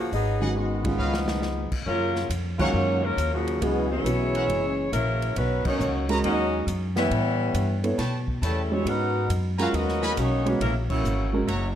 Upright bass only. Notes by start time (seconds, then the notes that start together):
0.12 G#1
0.99 C#2
1.72 muted upright bass stroke
1.86 F#2
2.30 F2
2.74 F#2
3.17 D#2
3.61 C#2
4.04 B1
4.48 F#1
4.92 A#1
5.36 B1
5.65 muted upright bass stroke
5.79 C#2
6.24 D#2
6.67 F#2
7.11 A2
7.54 G2
7.98 B2
8.42 E2
8.85 G#2
9.29 F#2
9.73 D#2
10.17 B1
10.61 A#1
11.04 G#1
11.48 F#1